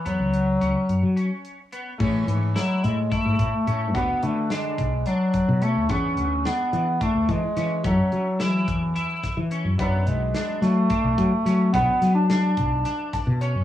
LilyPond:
<<
  \new Staff \with { instrumentName = "Grand piano" } { \time 7/8 \key d \lydian \tempo 4 = 108 << { r2. r8 | r2. r8 | r2. r8 | r2. r8 |
r2. r8 | r2. r8 | r2 r8 a''8 cis''8 | } \\ { r2. r8 | <a e' gis' cis''>2.~ <a e' gis' cis''>8 | <d d' fis' b'>2.~ <d d' fis' b'>8 | <d e b gis'>2.~ <d e b gis'>8 |
<fis cis' e' a'>2.~ <fis cis' e' a'>8 | <fis d' e' b'>2.~ <fis d' e' b'>8 | <fis d' e' b'>2.~ <fis d' e' b'>8 | } >> }
  \new Staff \with { instrumentName = "Clean electric guitar" } { \time 7/8 \key d \lydian b4 cis'4 cis'4 b8 | cis'4 e'4 e'4 cis'8 | b4 d'4 d'4 cis'8 | b4 d'4 d'4 cis'8 |
cis'4 e'4 e'4 cis'8 | b4 d'4 d'4 cis'8 | b4 d'4 d'4 cis'8 | }
  \new Staff \with { instrumentName = "Bass clarinet" } { \clef bass \time 7/8 \key d \lydian fis2~ fis8 r4 | e8 e8 fis8 gis8 a4. | b8 a8 gis4 fis4 a8 | cis'4 b4 a8 gis4 |
fis4 e2 r8 | fis8 gis4 a2 | b8. d'16 d'2 r8 | }
  \new Staff \with { instrumentName = "Fretless electric bass" } { \clef bass \time 7/8 \key d \lydian e,16 cis,8. cis,16 r16 fis,16 fis8 r4 r16 | a,8 gis,8 r8 a,8 r16 gis,16 a,16 r16 a,8 | d,16 r16 d4 b,,8 r8. b,8 d,16 | e,8 d,8 r8 e8 r16 d,16 e16 r16 e8 |
fis,16 r16 fis4 e,8 r8. e8 fis,16 | fis,8 b,,8 r8 fis8 r16 b,,16 fis16 r16 fis8 | b,,16 r16 fis4 b,,8 r8. b,8 fis,16 | }
  \new DrumStaff \with { instrumentName = "Drums" } \drummode { \time 7/8 hh8 hh8 hh8 hh8 hh8 hh8 hh8 | <cymc bd>8 hh8 <hh sn>8 hh8 <hh bd>8 <hh bd>8 hh8 | <hh bd>8 hh8 <hh sn>8 <hh bd>8 hh8 <hh bd>8 hh8 | <hh bd>8 hh8 <hh sn>8 hh8 <hh bd>8 <hh bd>8 <hh sn>8 |
<hh bd>8 hh8 <hh sn>8 <hh bd>8 hh8 <hh bd sn>8 hh8 | <hh bd>8 hh8 <hh sn>8 <hh sn>8 <hh bd>8 <hh bd>8 <hh sn>8 | <hh bd>8 <hh sn>8 <hh sn>8 <hh bd>8 <hh sn>8 <hh bd sn>8 hh8 | }
>>